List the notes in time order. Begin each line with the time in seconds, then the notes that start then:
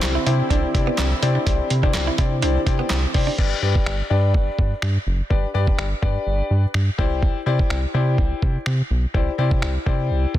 Already playing: D3 C4 D4 E4 G4 C5 D5
0.02 C2, snare, clap, closed hi-hat
0.15 E4
0.26 C3 D4 E4 G4 C5 D5, closed hi-hat
0.50 C2 D4 E4 G4 C5 D5, kick, closed hi-hat
0.63 muted clean electric guitar stroke
0.74 C3 D4 E4 G4 C5 D5, kick, closed hi-hat
0.87 B3
0.98 C2 C4, snare, clap, closed hi-hat
1.22 C3 D4 E4 G4 C5 D5, muted clean electric guitar stroke, closed hi-hat
1.35 D4
1.46 C2 C4 D4 E4 G4 C5 D5, kick, closed hi-hat
1.70 C3, muted clean electric guitar stroke, closed hi-hat
1.83 D4 E4 G4 C5 D5, kick
1.94 C2, muted clean electric guitar stroke, snare, clap, closed hi-hat
2.07 E4
2.18 C3 D4 E4 G4 C5 D5, kick, closed hi-hat
2.42 C2 D4 E4 G4 C5 D5, closed hi-hat
2.55 muted clean electric guitar stroke
2.66 C3 D4 E4 G4 C5 D5, kick, closed hi-hat
2.79 B3
2.90 C2 C4, snare, clap, closed hi-hat
3.14 C3 D4 E4 G4 C5 D5, muted clean electric guitar stroke, kick, open hi-hat
3.27 D4
3.38 G1 D4 G4 B4 D5, kick, crash
3.62 G2 D4 G4 B4 D5
3.75 kick
3.86 G1, finger snap
4.10 G2 D4 G4 B4 D5
4.34 G1, kick
4.59 G2, kick
4.82 G2, finger snap
5.07 F#1
5.30 G1 D4 G4 B4 D5, kick
5.54 G2 D4 G4 B4 D5
5.67 kick
5.78 G1, finger snap
6.02 G2 D4 G4 B4 D5, kick
6.26 G1
6.50 G2
6.74 G2, finger snap
6.98 C2 E4 G4 C5 D5, kick
7.23 kick
7.46 C3 E4 G4 C5 D5
7.59 kick
7.70 C2, finger snap
7.94 C3 E4 G4 C5 D5
8.18 C2, kick
8.42 C3, kick
8.66 C3, finger snap
8.90 B1
9.14 C2 E4 G4 C5 D5, kick
9.38 C3 E4 G4 C5 D5
9.51 kick
9.62 C2, finger snap
9.86 C3 E4 G4 C5 D5, kick
10.10 C2
10.34 C3, kick